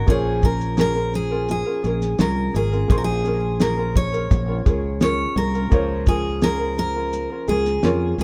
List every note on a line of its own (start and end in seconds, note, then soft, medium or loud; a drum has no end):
0.00 0.81 A#3 medium
0.00 0.42 C#4 medium
0.00 0.10 F#4 soft
0.00 0.15 F#4 medium
0.06 1.63 A#1 medium
0.06 2.89 F3 medium
0.06 2.85 A#3 medium
0.06 0.42 C#4 medium
0.06 0.43 F4 medium
0.06 0.41 G#4 medium
0.06 2.86 G#4 medium
0.06 0.45 G#4 medium
0.06 0.44 A#4 medium
0.06 kick loud
0.06 shaker medium
0.10 2.87 C#5 medium
0.42 1.13 C#4 medium
0.42 0.77 C#4 medium
0.42 0.77 F4 medium
0.42 0.76 G#4 medium
0.42 0.80 A#4 medium
0.42 0.78 A#4 medium
0.42 kick medium
0.42 shaker medium
0.61 shaker soft
0.77 0.96 C#4 medium
0.77 0.95 F4 medium
0.77 0.95 G#4 medium
0.77 1.83 G#4 medium
0.77 0.93 A#4 medium
0.77 snare loud
0.77 shaker medium
0.81 1.13 A#4 medium
0.94 1.32 C#4 soft
0.94 1.31 F4 soft
0.94 1.29 A#4 medium
1.13 2.19 C#4 medium
1.13 1.47 G#4 medium
1.13 shaker medium
1.31 1.67 C#4 soft
1.31 1.66 F4 medium
1.31 1.64 A#4 medium
1.48 2.54 A#3 medium
1.48 2.17 G#4 medium
1.48 shaker medium
1.65 1.83 C#4 soft
1.65 1.84 F4 soft
1.65 1.84 A#4 medium
1.83 2.13 A#1 medium
1.83 2.18 C#4 medium
1.83 2.18 F4 medium
1.83 2.17 G#4 medium
1.83 3.60 G#4 medium
1.83 2.19 A#4 medium
1.83 shaker soft
2.02 snare soft
2.02 shaker medium
2.18 2.48 C2 medium
2.18 3.25 C#4 medium
2.18 2.54 C#4 medium
2.18 2.55 F4 medium
2.18 2.53 G#4 medium
2.18 2.55 A#4 medium
2.18 2.56 A#4 medium
2.18 snare loud
2.18 shaker medium
2.54 2.83 G#1 medium
2.54 4.30 A#3 medium
2.54 2.72 C#4 medium
2.54 2.72 F4 medium
2.54 2.72 G#4 medium
2.54 2.88 G#4 medium
2.54 2.70 A#4 medium
2.54 shaker medium
2.72 2.89 C#4 soft
2.72 2.90 F4 medium
2.72 2.90 A#4 medium
2.72 shaker soft
2.88 4.27 A#1 loud
2.88 5.71 F3 medium
2.88 5.67 A#3 medium
2.88 3.24 C#4 medium
2.88 3.25 F4 medium
2.88 3.23 G#4 medium
2.88 5.68 G#4 medium
2.88 2.97 G#4 medium
2.88 3.26 A#4 medium
2.88 5.69 C6 medium
2.88 kick loud
2.88 shaker medium
2.98 3.04 A#4 medium
3.04 3.61 G#4 medium
3.24 3.95 C#4 medium
3.24 3.60 C#4 medium
3.24 3.61 F4 medium
3.24 3.59 G#4 medium
3.24 3.61 A#4 medium
3.24 shaker medium
3.60 3.78 C#4 medium
3.60 3.78 F4 medium
3.60 3.78 G#4 medium
3.60 4.66 G#4 medium
3.60 3.96 A#4 medium
3.60 3.76 A#4 medium
3.60 snare loud
3.60 shaker medium
3.77 4.14 C#4 soft
3.77 4.13 F4 soft
3.77 4.12 A#4 medium
3.96 5.01 C#4 medium
3.96 5.01 C#5 loud
3.96 kick medium
3.96 shaker soft
4.13 4.49 C#4 soft
4.13 4.48 F4 soft
4.13 4.46 A#4 medium
4.13 shaker medium
4.31 4.60 A#1 loud
4.31 5.36 A#3 medium
4.31 kick medium
4.31 shaker medium
4.47 4.66 C#4 soft
4.47 4.67 F4 medium
4.47 4.66 A#4 medium
4.66 5.24 C#2 medium
4.66 5.01 C#4 medium
4.66 5.02 F4 medium
4.66 5.00 G#4 medium
4.66 6.42 G#4 medium
4.66 5.02 A#4 medium
4.66 kick medium
4.66 shaker soft
5.01 6.06 C#4 medium
5.01 5.36 C#4 medium
5.01 5.37 F4 medium
5.01 5.35 G#4 medium
5.01 5.38 A#4 loud
5.01 5.37 C#5 medium
5.01 snare loud
5.01 shaker medium
5.36 5.65 C2 medium
5.36 6.45 A#3 medium
5.36 5.55 C#4 medium
5.36 5.54 F4 medium
5.36 5.54 G#4 medium
5.36 6.08 A#4 medium
5.36 5.53 A#4 medium
5.36 shaker medium
5.54 5.71 C#4 soft
5.54 5.72 F4 medium
5.54 5.72 A#4 medium
5.54 shaker soft
5.70 7.27 C#2 medium
5.70 8.24 F3 medium
5.70 7.79 A#3 medium
5.70 6.06 C#4 medium
5.70 7.80 F4 medium
5.70 6.07 F4 medium
5.70 6.05 G#4 medium
5.70 6.08 A#4 medium
5.70 kick loud
5.70 shaker medium
5.74 7.81 C#5 medium
6.06 6.77 C#4 medium
6.06 6.42 C#4 medium
6.06 6.43 F4 medium
6.06 6.41 G#4 medium
6.06 6.43 G#4 medium
6.06 6.43 A#4 medium
6.06 kick medium
6.06 shaker medium
6.42 6.60 C#4 medium
6.42 6.60 F4 medium
6.42 6.60 G#4 medium
6.42 7.47 G#4 medium
6.42 6.78 A#4 medium
6.42 6.58 A#4 medium
6.42 snare loud
6.42 shaker medium
6.59 6.97 C#4 soft
6.59 6.95 F4 medium
6.59 6.94 A#4 medium
6.77 7.83 C#4 medium
6.77 7.49 A#4 loud
6.77 shaker medium
6.95 7.32 C#4 soft
6.95 7.31 F4 medium
6.95 7.29 A#4 medium
7.13 8.18 A#3 medium
7.13 shaker medium
7.30 7.48 C#4 soft
7.30 7.49 F4 soft
7.30 7.48 A#4 medium
7.48 7.77 C#2 medium
7.48 7.82 C#4 medium
7.48 7.83 F4 medium
7.48 8.24 G#4 medium
7.48 7.82 G#4 medium
7.48 8.15 G#4 medium
7.48 7.84 A#4 medium
7.48 shaker soft
7.66 snare soft
7.66 shaker medium
7.83 8.12 F2 medium
7.83 8.24 A#3 medium
7.83 8.24 C#4 medium
7.83 8.18 C#4 medium
7.83 8.24 F4 soft
7.83 8.19 F4 medium
7.83 8.17 G#4 medium
7.83 8.20 A#4 medium
7.83 8.24 C#5 medium
7.83 snare loud
7.83 shaker medium
8.18 8.24 C#2 loud
8.18 8.24 A#3 medium
8.18 8.24 C#4 medium
8.18 8.24 F4 medium
8.18 8.24 G#4 medium
8.18 shaker medium